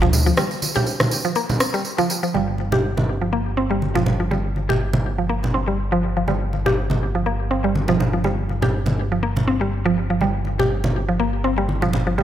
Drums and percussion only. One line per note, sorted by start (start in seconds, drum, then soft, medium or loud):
0.03 low conga medium
0.13 tambourine medium
0.13 low conga loud
0.27 tambourine soft
0.37 cross-stick medium
0.37 tambourine soft
0.37 high conga medium
0.51 tambourine soft
0.62 tambourine medium
0.62 high conga medium
0.75 tambourine soft
0.75 low conga loud
0.86 tambourine soft
1.00 cross-stick medium
1.00 tambourine soft
1.00 high conga loud
1.00 low conga loud
1.11 tambourine medium
1.25 tambourine soft
1.35 tambourine soft
1.49 tambourine soft
1.49 high conga medium
1.49 low conga loud
1.60 cross-stick medium
1.60 tambourine medium
1.74 tambourine soft
1.85 tambourine soft
1.98 tambourine soft
1.98 high conga medium
2.10 tambourine medium
2.23 tambourine soft
2.35 high conga medium
2.58 high conga medium
2.72 low conga loud
2.97 high conga medium
2.97 low conga loud
3.82 high conga medium
3.96 low conga medium
4.06 low conga loud
4.31 high conga medium
4.56 high conga medium
4.70 low conga loud
4.93 high conga loud
4.93 low conga loud
5.43 high conga medium
5.43 low conga medium
6.28 high conga medium
6.53 high conga medium
6.66 low conga loud
6.90 high conga loud
6.90 low conga medium
7.75 high conga medium
7.88 low conga medium
8.00 low conga loud
8.24 high conga medium
8.49 high conga medium
8.62 low conga loud
8.86 high conga loud
8.86 low conga medium
9.36 high conga medium
9.36 low conga medium
10.21 high conga medium
10.45 high conga medium
10.60 low conga medium
10.84 high conga loud
10.84 low conga medium
11.69 high conga medium
11.82 low conga medium
11.93 low conga loud
12.18 high conga medium